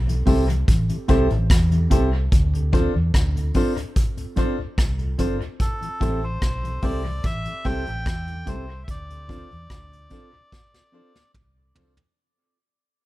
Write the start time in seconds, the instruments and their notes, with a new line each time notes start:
Already playing: fingered electric bass B1
0.07 tonewheel organ A2 E3, closed hi-hat
0.26 fingered electric bass C2, tonewheel organ G3 A3 C4, clean electric guitar C4 G4 A4, upright piano E4 G4 A4 C5, kick, open hi-hat
0.48 tonewheel organ A2 E3, closed hi-hat
0.68 fingered electric bass A1, kick, closed hi-hat
0.89 tonewheel organ A2 E3, closed hi-hat
1.08 fingered electric bass C2, tonewheel organ G3 A3 C4, clean electric guitar C4 G4 A4, upright piano E4 G4 A4 C5, kick, closed hi-hat
1.30 fingered electric bass A1, tonewheel organ A2 E3, closed hi-hat
1.50 fingered electric bass E2, kick, cross-stick, closed hi-hat
1.71 tonewheel organ A2 E3, closed hi-hat
1.90 fingered electric bass C2, tonewheel organ G3 A3 C4, clean electric guitar C4 G4 A4, upright piano E4 G4 A4 C5, kick, closed hi-hat
2.13 upright piano A4 C5
2.32 fingered electric bass D2, kick, closed hi-hat
2.54 tonewheel organ D2 A2, closed hi-hat
2.73 tonewheel organ F3 C4 D4, clean electric guitar C4 F4 A4, upright piano D4 F4 A4 C5, kick, closed hi-hat
2.94 tonewheel organ D2 A2, fingered electric bass E2
3.14 fingered electric bass D2, kick, cross-stick, closed hi-hat
3.36 tonewheel organ D2 A2, closed hi-hat
3.54 tonewheel organ F3 C4 D4, clean electric guitar C4 F4 A4, upright piano D4 F4 A4 C5, kick, open hi-hat
3.76 tonewheel organ D2 A2, muted clean electric guitar stroke, closed hi-hat
3.96 kick, closed hi-hat
4.17 tonewheel organ D2 A2, closed hi-hat
4.36 tonewheel organ F3 C4 D4, clean electric guitar C4 F4 A4, upright piano D4 F4 A4 C5, kick, closed hi-hat
4.58 tonewheel organ D2 A2
4.78 fingered electric bass C2, kick, cross-stick, closed hi-hat
4.99 tonewheel organ D2 A2, closed hi-hat
5.18 fingered electric bass G1, tonewheel organ F3 C4 D4, clean electric guitar C4 F4 A4, upright piano D4 F4 A4 C5, kick, closed hi-hat
5.40 tonewheel organ D2 A2, closed hi-hat
5.60 melodica A4, kick, closed hi-hat
5.81 tonewheel organ A2 E3, closed hi-hat
6.00 fingered electric bass A1, tonewheel organ G3 A3 C4, clean electric guitar C4 G4 A4, upright piano E4 G4 A4 C5, kick, closed hi-hat
6.23 tonewheel organ A2 E3, melodica C5
6.42 fingered electric bass B1, kick, cross-stick, closed hi-hat
6.63 tonewheel organ A2 E3, closed hi-hat
6.82 fingered electric bass C2, tonewheel organ G3 A3 C4, clean electric guitar C4 G4 A4, upright piano E4 G4 A4 C5, melodica D5, kick, open hi-hat
7.05 tonewheel organ A2 E3
7.24 fingered electric bass A1, melodica E5, kick, closed hi-hat
7.45 tonewheel organ A2 E3, closed hi-hat
7.64 fingered electric bass C2, tonewheel organ G3 A3 C4, clean electric guitar C4 G4 A4, upright piano E4 G4 A4 C5, melodica G5, kick, open hi-hat
7.86 fingered electric bass A1, tonewheel organ A2 E3, closed hi-hat
8.06 fingered electric bass E2, kick, cross-stick, closed hi-hat
8.27 tonewheel organ A2 E3, closed hi-hat
8.46 fingered electric bass C2, tonewheel organ G3 A3 C4, clean electric guitar C4 G4 A4, upright piano E4 G4 A4 C5, melodica C5, kick, closed hi-hat
8.69 upright piano A4 C5
8.84 melodica E5
8.88 fingered electric bass D2, melodica D5, kick, closed hi-hat
9.10 tonewheel organ D2 A2, closed hi-hat
9.28 tonewheel organ F3 C4 D4, clean electric guitar C4 F4 A4, upright piano D4 F4 A4 C5, kick, closed hi-hat
9.51 tonewheel organ D2 A2, fingered electric bass E2, closed hi-hat
9.70 fingered electric bass D2, kick, cross-stick, closed hi-hat
9.92 tonewheel organ D2 A2, closed hi-hat
10.10 tonewheel organ F3 C4 D4, clean electric guitar C4 F4 A4, upright piano D4 F4 A4 C5, kick, closed hi-hat
10.33 tonewheel organ D2 A2
10.52 kick, snare
10.74 tonewheel organ D2 A2, snare
10.92 tonewheel organ F3 C4 D4, clean electric guitar C4 F4 A4, upright piano D4 F4 A4 C5
11.15 tonewheel organ D2 A2, snare
11.34 fingered electric bass C2, kick, mid tom
11.56 tonewheel organ D2 A2
11.75 fingered electric bass C2, tonewheel organ F3 C4 D4, clean electric guitar C4 F4 A4, upright piano D4 F4 A4 C5, floor tom
11.97 tonewheel organ D2 A2, floor tom